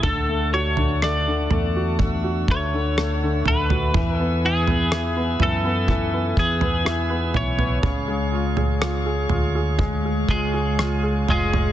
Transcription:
Already playing: A3
0.03 D2 D3 D4 A4 F#5 A5, kick, floor tom
0.29 A3
0.53 F#4 C#5
0.77 D3, floor tom
1.02 A3 D5, cross-stick
1.28 D3
1.51 E2 A3, floor tom
1.76 F#4
1.99 A3 E6, kick, floor tom
2.24 F#4
2.48 D2 A3 C#5, kick
2.74 D3
2.98 A3, cross-stick
3.23 D3
3.46 D2 A3 B4, floor tom
3.70 F#4, floor tom
3.93 E3 B4 E5 G#5 E6, kick, floor tom
4.18 B3 A4
4.45 E3 G#4
4.67 B3, floor tom
4.92 E3, cross-stick
5.16 B3
5.40 F#2 E3 A4, floor tom
5.65 B3
5.88 E3, kick, floor tom
6.13 B3
6.37 E2 E3 G#4, kick
6.61 B3, floor tom
6.85 E3, cross-stick
7.10 B3
7.34 B1 E3 C#5, floor tom
7.59 B3, floor tom
7.82 C#2 C#3 G#4 C#5 F5 C#6, kick, floor tom
8.08 G#3
8.32 F4
8.57 G#4, floor tom
8.81 F4, cross-stick
9.06 G#4
9.29 D2 F4, floor tom
9.55 G#4
9.79 G#3, kick, floor tom
10.05 G#4
10.29 C#2 G#3 F4 G#4, kick
10.54 G#4
10.79 F4, cross-stick
11.03 G#4
11.28 F1 G#3 F4 G#4, floor tom
11.53 G#4, floor tom

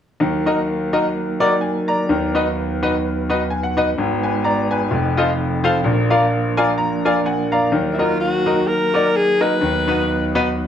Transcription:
0.20 D#2 D#3 F#3 A#3 D#4 A#4
0.46 D#4 F#4 A#4 D#5
0.93 D#4 F#4 A#4 D#5
1.40 D#4 F#4 A#4 D5
1.61 G#5
1.88 D5 A#5
2.09 D#2 D#3 B3 B4
2.35 D#4 F#4 B4 D#5
2.83 D#4 F#4 B4 D#5
3.30 D#4 F#4 B4 D#5
3.50 G#5
3.63 F#5
3.77 D#4 F#4 B4 D#5
3.98 G#1 G#2 G#3 B4
4.23 B4 G#5
4.44 D5 A#5
4.71 B4 G#5
4.91 F1 F2 F3 C4 A4
5.17 F4 A4 C5 D#5
5.64 F4 A4 C5 F5
5.84 A#1 A#2 A#3 D4 A#4
6.10 F4 A#4 D5 F5
6.57 F4 A#4 D5 G#5
6.78 A#5
7.05 F4 A#4 D5 G#5
7.26 F#5 G#5
7.52 D5 F5 A#5
7.72 D#2 D#3 F#3 A#3 D#4 A#4
7.93 E4
7.99 D#4 F4 F#4 A#4 D#5
8.20 F#4
8.46 D#4 F#4 A#4 D#5
8.67 A#4
8.94 D#4 F#4 A#4 D5
9.16 G#4
9.41 D#4 F#4 A#4 B4 D#5
9.61 D#2 D#3 B3 D#5
9.87 B3 D#4 F#4 B4
10.35 B3 D#4 F#4 B4

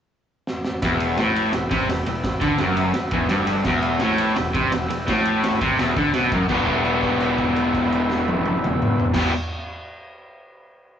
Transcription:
0.47 snare
0.65 snare
0.82 E1 E2 G4 B4 E5, kick, snare, ride
1.00 ride
1.17 A1 A2, snare, ride
1.36 ride
1.53 E1 E2, snare, ride
1.71 C2 C3, kick, ride
1.89 E1 E2, snare, ride
2.06 E1 E2, ride
2.24 kick, snare, ride
2.41 D2 D3, kick, ride
2.58 F#1 F#2, snare, ride
2.77 ride
2.94 muted overdriven electric guitar stroke, muted picked electric bass stroke, snare, ride
3.11 E1 E2, kick, ride
3.29 G1 G2, snare, ride
3.47 ride
3.64 E1 E2 G4 B4, kick, snare, crash
3.69 E5
3.82 ride
3.99 A1 A2, snare, ride
4.18 ride
4.36 E1 E2, snare, ride
4.54 C2 C3, kick, ride
4.72 E1 E2, snare, ride
4.89 E1 E2, ride
5.08 A1 A2, kick, snare, ride
5.25 ride
5.43 snare, ride
5.61 C2 C3, kick, ride
5.79 E1 E2, snare, ride
5.96 D2 D3, kick, ride
6.13 B1 B2, snare, ride
6.32 F#1 F#2, kick, ride
6.49 E1 E2 B2 E3 G3 B3 G4 B4 E5, kick, crash
6.67 kick, crash
6.85 crash
7.03 kick, crash
7.20 crash
7.38 kick, crash
7.56 crash
7.74 kick, crash
7.92 crash
8.10 snare
8.28 high tom
8.46 high tom
8.64 mid tom
8.82 mid tom
9.00 floor tom
9.13 E1 E2 B2 E3 G3 B3 G4 B4 E5, kick, snare, crash
9.18 G4

